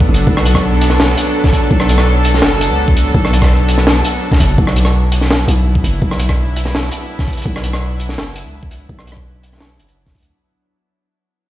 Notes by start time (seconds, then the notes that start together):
Already playing: F#3 B3 D4 A4
0.00 kick
0.09 F#1
0.14 closed hi-hat
0.27 B1, kick
0.37 cross-stick
0.45 closed hi-hat
0.54 kick, cross-stick
0.81 closed hi-hat
0.90 cross-stick, snare
1.00 snare
1.17 closed hi-hat
1.44 kick, snare
1.53 kick, closed hi-hat
1.71 B1, kick
1.80 cross-stick
1.89 closed hi-hat
1.98 cross-stick
2.25 closed hi-hat
2.34 snare
2.42 F#1, snare
2.61 closed hi-hat
2.70 C#2
2.88 kick
2.96 closed hi-hat
3.14 B1, kick
3.25 cross-stick
3.33 closed hi-hat
3.42 kick, cross-stick
3.44 cross-stick
3.46 cross-stick
3.48 cross-stick
3.51 cross-stick
3.53 cross-stick
3.55 cross-stick
3.58 cross-stick
3.68 closed hi-hat
3.78 cross-stick, snare
3.87 snare
4.05 closed hi-hat
4.32 kick, snare
4.40 F#1, kick, closed hi-hat
4.58 B1 E4, kick
4.67 cross-stick
4.76 closed hi-hat
4.85 cross-stick
5.12 closed hi-hat
5.21 snare
5.31 snare
5.48 B1, closed hi-hat
5.75 kick
5.84 F#1, closed hi-hat
6.02 B1, kick
6.11 cross-stick
6.20 closed hi-hat
6.29 kick, cross-stick
6.56 closed hi-hat
6.66 cross-stick, snare
6.75 snare
6.91 closed hi-hat
7.19 kick, snare
7.28 kick, closed hi-hat
7.33 closed hi-hat
7.37 closed hi-hat
7.42 B1, kick, closed hi-hat
7.56 cross-stick
7.64 closed hi-hat
7.73 cross-stick
8.00 closed hi-hat
8.09 snare
8.17 F#1, snare
8.36 closed hi-hat
8.45 C#2
8.63 kick
8.71 closed hi-hat
8.89 B1, kick
8.99 cross-stick
9.07 closed hi-hat
9.12 cross-stick
9.17 kick
9.43 closed hi-hat
9.52 cross-stick, snare
9.55 snare
9.58 snare
9.60 snare
9.64 snare
9.67 snare
9.79 F#1, closed hi-hat
9.88 closed hi-hat
10.06 kick, snare
10.15 D2, kick, closed hi-hat
10.18 closed hi-hat
10.20 closed hi-hat
10.22 closed hi-hat